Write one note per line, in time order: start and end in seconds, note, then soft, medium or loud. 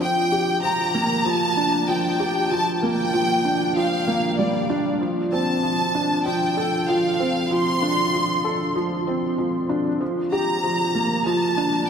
0.01 0.19 F3 medium
0.01 0.60 G5 loud
0.32 0.62 G4 medium
0.63 0.81 F3 medium
0.63 1.26 A#5 loud
0.94 1.24 A#3 medium
1.26 1.56 F3 medium
1.26 1.89 A5 loud
1.57 1.75 D4 medium
1.89 2.06 F3 medium
1.89 2.52 G5 loud
2.20 2.50 G4 medium
2.51 2.69 F3 medium
2.51 2.74 A5 loud
2.75 2.82 A5 medium
2.83 3.12 A#3 medium
2.83 3.77 G5 loud
3.14 3.43 F3 medium
3.45 3.63 D4 medium
3.76 3.94 F3 medium
3.76 4.35 F5 medium
4.07 4.37 A#3 medium
4.38 4.56 G3 medium
4.38 4.86 D5 medium
4.70 4.99 D4 loud
5.01 5.19 F3 medium
5.32 5.62 C4 medium
5.32 6.22 A5 loud
5.63 5.93 F3 medium
5.95 6.13 D4 medium
6.26 6.44 F3 medium
6.26 6.89 G5 loud
6.57 6.87 A4 medium
6.88 7.06 F3 medium
6.88 7.51 F5 medium
7.20 7.49 C4 medium
7.51 7.81 F3 medium
7.51 8.76 C6 loud
7.82 8.00 D4 medium
8.13 8.31 F3 medium
8.44 8.74 A4 medium
8.76 8.94 F3 medium
9.07 9.37 C4 medium
9.38 9.68 F3 medium
9.69 9.87 D4 medium
10.01 10.19 F3 medium
10.32 10.62 G4 medium
10.32 11.22 A#5 loud
10.64 10.81 F3 medium
10.95 11.24 A#3 medium
11.26 11.56 F3 medium
11.26 11.89 A5 loud
11.57 11.75 D4 medium